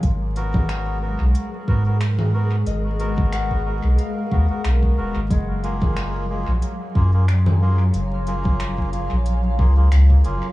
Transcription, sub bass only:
X:1
M:4/4
L:1/16
Q:"Swing 16ths" 1/4=91
K:G#dor
V:1 name="Sub bass" clef=bass
G,,,6- G,,, B,,, z2 G,,6 | G,,,6- G,,, B,,, z2 D,, z B,,,2 D,,, G,,, | F,,,6- F,,, A,,, z2 F,,6 | F,,,6- F,,, A,,,3 C,,2 C,,2 F,,, z |]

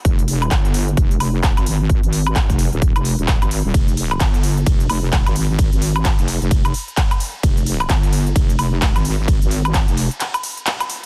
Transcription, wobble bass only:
X:1
M:4/4
L:1/16
Q:"Swing 16ths" 1/4=130
K:Fm
V:1 name="Wobble bass" clef=bass
F,,,4 G,,,4 F,,,2 F,,,3 A,,,3- | A,,, A,,,4 F,,,2 E,,,2 F,,,2 E,,,2 A,,,2 E,,, | F,,,4 G,,,4 F,,,2 F,,,3 A,,,3- | A,,, A,,,4 F,,,2 F,,,3 z6 |
F,,,4 G,,,4 F,,,2 F,,,3 A,,,3- | A,,, A,,,4 F,,,2 z8 z |]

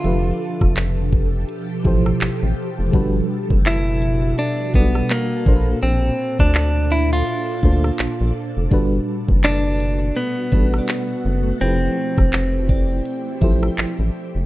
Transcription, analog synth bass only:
X:1
M:4/4
L:1/16
Q:"Swing 16ths" 1/4=83
K:G
V:1 name="Analog synth bass" clef=bass
=F,,,2 z F,,,4- F,,, z2 A,,,2 A,,, A,,, z F,,, | G,,,2 z F,,,4- F,,, z2 B,,,2 z2 _B,,,2 | _B,,,2 z D,,4- D,, z2 D,,2 B,,, B,,, z =F,,, | G,,,2 z F,,,4- F,,, z2 A,,,2 z2 F,,,2 |
=F,,,2 z F,,,4- F,,, z2 A,,,2 A,,, A,,, z F,,, |]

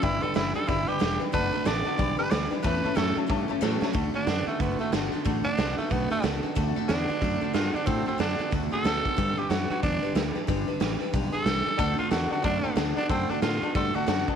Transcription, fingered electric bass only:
X:1
M:4/4
L:1/8
Q:"Swing" 1/4=184
K:D
V:1 name="Fingered electric bass" clef=bass
G,,, z F,,, z G,,, z E,,, z | F,,, z A,,, z B,,, z D,, z | E,, z F,, z G,, z A,, z | D,, z F,, z F,,, z G,,, z |
A,,, z =C,, z B,,, z ^C,, z | D,, z E,, z F,, z G,, z | A,, z F,, z D,, z D,, z | G,, z F,, z E,, z D,, z |
G,,, z A,,, z B,,, z =C,, z | D,, z E,, z F,, z D,, z | F,, z A,, z G,, z F,, z |]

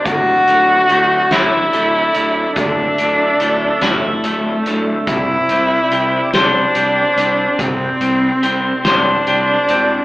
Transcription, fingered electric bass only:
X:1
M:6/8
L:1/8
Q:3/8=48
K:Clyd
V:1 name="Fingered electric bass" clef=bass
D,,, D,,, D,,, D,,, D,,, D,,, | D,,, D,,, D,,, D,,, D,,, D,,, | C,, C,, C,, C,, C,, C,, | C,, C,, C,, C,, C,, E,,, |]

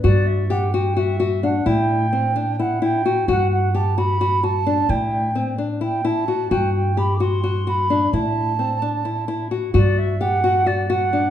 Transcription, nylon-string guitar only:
X:1
M:7/8
L:1/8
Q:1/4=130
K:G
V:1 name="Nylon-string guitar"
F2 G F F F D | E2 C D E E F | F2 G F F F D | E2 C D E E F |
F2 G F F F D | E2 C D E E F | F2 G F F F D |]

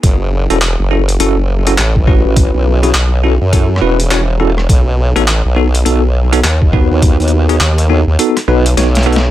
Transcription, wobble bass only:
X:1
M:4/4
L:1/16
Q:"Swing 16ths" 1/4=103
K:F#dor
V:1 name="Wobble bass" clef=bass
F,,,3 E,,,2 F,,,3 F,,,4 A,,,3 A,,,- | A,,, B,,,3 B,,,3 F,,3 E,,,6 | B,,,3 A,,,2 B,,,3 B,,,4 D,,3 D,,- | D,, D,,3 D,,3 D,, z2 B,,,2 B,,,4 |]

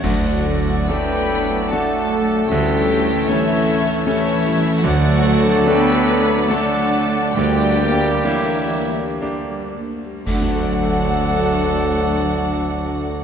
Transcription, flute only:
X:1
M:3/4
L:1/8
Q:1/4=70
K:D
V:1 name="Flute"
d2 g2 f2 | e2 c2 c2 | d2 g z f2 | d2 c2 z2 |
f6 |]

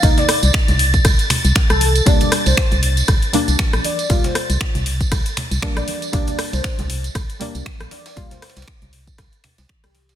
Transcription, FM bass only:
X:1
M:4/4
L:1/16
Q:"Swing 16ths" 1/4=118
K:Gm
V:1 name="FM bass" clef=bass
C,, z2 C,, z C,,2 z C,, z2 C,, z C,,2 z | C,, z2 C,, z C,,2 z C,, z2 C,, z B,,, z2 | C,, z2 C,, z C,,2 z C,, z2 C,, z B,,, z2 | C,, z2 C,, z C,,2 z C,, z2 C,, z B,,, z2 |
C,, z2 C,, z C,,2 z C,, z2 C,, z C,,2 z |]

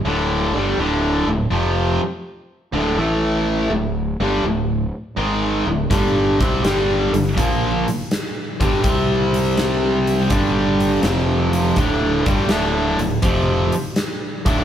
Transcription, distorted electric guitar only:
X:1
M:4/4
L:1/8
Q:"Swing" 1/4=82
K:G
V:1 name="Distorted electric guitar" clef=bass
[D,,A,,D,] [G,,D,G,] [D,,A,,D,] [D,,A,,] [=F,,C,=F,] z2 [D,,A,,D,] | [A,,E,A,]2 [D,,A,,] [G,,D,G,] [D,,A,,] z [^G,,_E,^G,] [D,,A,,] | [G,,D,G,] [C,G,C] [G,,D,G,] [G,,D,] [_B,,=F,_B,] z2 [G,,D,G,] | [C,G,C]4 [G,,D,G,]2 [=F,,C,=F,]2 |
[D,,A,,D,] [G,,D,G,] [D,,A,,D,] [D,,A,,] [=F,,C,=F,] z2 [D,,A,,D,] |]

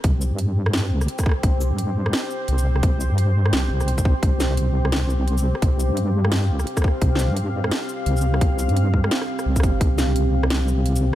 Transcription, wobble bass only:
X:1
M:4/4
L:1/16
Q:"Swing 16ths" 1/4=172
K:Dblyd
V:1 name="Wobble bass" clef=bass
C,,3 G,,6- G,, D,,2 z4 | C,,3 G,,4- G,, z4 C,,4 | C,,3 G,,4- G,, C,,2 C,,4- C,, z | C,,12- C,,3 z |
C,,3 G,,6- G,, D,,2 z4 | C,,3 G,,4- G,, z4 C,,4 | C,,3 G,,4- G,, z4 C,,2 G,,,2 | C,,12- C,,3 z |]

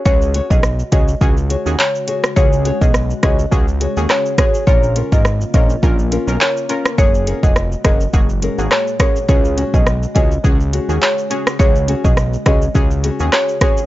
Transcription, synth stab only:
X:1
M:4/4
L:1/16
Q:"Swing 16ths" 1/4=104
K:Dbmix
V:1 name="Synth stab"
[DGA]3 [DGA] z2 [DGA] z [DGA] z2 [DGA] z4 | [DGA]3 [DGA] z2 [DGA] z [DGA] z2 [DGA]3 [DGA]2 | [DFB]3 [DFB] z2 [DFB] z [DFB] z2 [DFB]3 [DFB]2 | [B,GA]3 [B,GA] z2 [B,GA] z [B,GA] z2 [B,GA]3 [B,GA]2 |
[DGA]3 [DGA] z2 [DGA] z [DGA] z2 [DGA]3 [DGA]2 | [DGA]3 [DGA] z2 [DGA] z [DGA] z2 [DGA]3 [DGA]2 |]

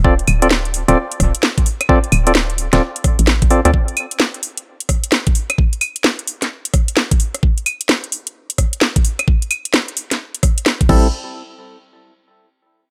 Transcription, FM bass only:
X:1
M:4/4
L:1/16
Q:"Swing 16ths" 1/4=130
K:Ddor
V:1 name="FM bass" clef=bass
D,,,2 D,,,4- D,,, D,,, z2 D,,, z4 z | z2 D,,,4- D,,, D,,, z3 A,,,4 D,, | z16 | z16 |
z16 | z12 z2 A,,,2 | z16 |]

